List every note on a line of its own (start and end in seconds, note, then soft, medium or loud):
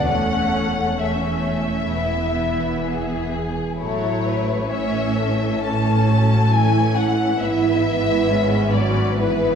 0.06 1.88 E1 soft
0.06 1.88 E2 soft
0.06 0.97 A3 soft
0.06 0.97 C#4 soft
0.06 0.99 A4 soft
0.06 0.97 F#5 medium
0.98 1.90 A3 soft
0.98 1.89 C#4 soft
0.98 1.87 C#4 soft
0.98 3.32 E5 soft
1.91 3.55 E1 soft
1.91 3.55 E2 soft
1.91 3.59 E3 soft
1.91 3.58 B3 soft
1.91 2.84 E4 soft
2.85 3.80 G#4 soft
3.78 7.37 A1 soft
3.78 7.37 A2 soft
3.78 4.66 F#3 soft
3.78 4.66 A3 soft
3.78 4.65 E4 soft
3.78 4.21 A4 soft
3.78 4.65 C#5 soft
4.26 4.69 B4 soft
4.70 5.61 E3 soft
4.70 6.50 C#4 soft
4.70 5.62 C#4 soft
4.70 5.16 C#5 soft
4.70 5.62 E5 soft
5.17 7.42 A4 soft
5.63 6.07 E3 soft
5.63 6.51 C#4 soft
5.63 6.51 A5 soft
6.08 6.53 F#3 soft
6.51 7.39 E3 soft
6.51 7.39 C#4 soft
6.51 7.39 E4 soft
6.51 6.96 G#5 medium
6.97 7.41 F#5 medium
7.40 9.55 G#1 soft
7.40 9.55 G#2 soft
7.40 8.28 E3 soft
7.40 9.16 B3 soft
7.40 8.28 E4 soft
7.40 9.55 B4 soft
7.40 8.73 E5 medium
8.29 8.73 G#3 soft
8.29 9.16 C#4 soft
8.73 9.16 F#3 soft
8.73 9.16 D5 soft
9.16 9.55 E3 soft
9.16 9.55 B3 soft
9.16 9.55 E4 soft
9.16 9.55 B4 soft